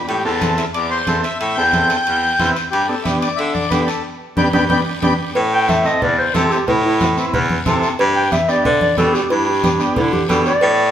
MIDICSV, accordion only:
0, 0, Header, 1, 2, 480
1, 0, Start_track
1, 0, Key_signature, 0, "minor"
1, 0, Tempo, 329308
1, 127, Time_signature, 4, 2, 24, 8
1, 15904, End_track
2, 0, Start_track
2, 0, Title_t, "Accordion"
2, 0, Program_c, 0, 21
2, 127, Note_on_c, 0, 67, 77
2, 351, Note_off_c, 0, 67, 0
2, 363, Note_on_c, 0, 69, 82
2, 841, Note_on_c, 0, 76, 80
2, 861, Note_off_c, 0, 69, 0
2, 951, Note_off_c, 0, 76, 0
2, 1084, Note_on_c, 0, 74, 90
2, 1310, Note_off_c, 0, 74, 0
2, 1315, Note_on_c, 0, 72, 90
2, 1769, Note_off_c, 0, 72, 0
2, 1791, Note_on_c, 0, 76, 90
2, 2012, Note_off_c, 0, 76, 0
2, 2034, Note_on_c, 0, 76, 103
2, 2264, Note_on_c, 0, 79, 108
2, 2290, Note_off_c, 0, 76, 0
2, 3662, Note_off_c, 0, 79, 0
2, 3950, Note_on_c, 0, 67, 89
2, 4184, Note_off_c, 0, 67, 0
2, 4188, Note_on_c, 0, 69, 81
2, 4424, Note_off_c, 0, 69, 0
2, 4430, Note_on_c, 0, 76, 85
2, 4544, Note_off_c, 0, 76, 0
2, 4675, Note_on_c, 0, 74, 83
2, 4905, Note_on_c, 0, 76, 92
2, 4933, Note_off_c, 0, 74, 0
2, 5143, Note_off_c, 0, 76, 0
2, 5149, Note_on_c, 0, 74, 84
2, 5399, Note_on_c, 0, 71, 84
2, 5410, Note_off_c, 0, 74, 0
2, 5626, Note_on_c, 0, 69, 77
2, 5655, Note_off_c, 0, 71, 0
2, 5864, Note_off_c, 0, 69, 0
2, 6370, Note_on_c, 0, 74, 85
2, 6370, Note_on_c, 0, 79, 85
2, 6376, Note_on_c, 0, 71, 86
2, 6527, Note_off_c, 0, 74, 0
2, 6527, Note_off_c, 0, 79, 0
2, 6530, Note_off_c, 0, 71, 0
2, 6613, Note_on_c, 0, 74, 90
2, 6614, Note_on_c, 0, 71, 81
2, 6616, Note_on_c, 0, 79, 84
2, 6769, Note_off_c, 0, 71, 0
2, 6769, Note_off_c, 0, 74, 0
2, 6770, Note_off_c, 0, 79, 0
2, 6845, Note_on_c, 0, 79, 89
2, 6848, Note_on_c, 0, 71, 87
2, 6850, Note_on_c, 0, 74, 88
2, 7004, Note_off_c, 0, 79, 0
2, 7006, Note_off_c, 0, 71, 0
2, 7007, Note_off_c, 0, 74, 0
2, 7331, Note_on_c, 0, 71, 91
2, 7331, Note_on_c, 0, 74, 89
2, 7333, Note_on_c, 0, 79, 91
2, 7487, Note_off_c, 0, 71, 0
2, 7487, Note_off_c, 0, 74, 0
2, 7489, Note_off_c, 0, 79, 0
2, 15904, End_track
0, 0, End_of_file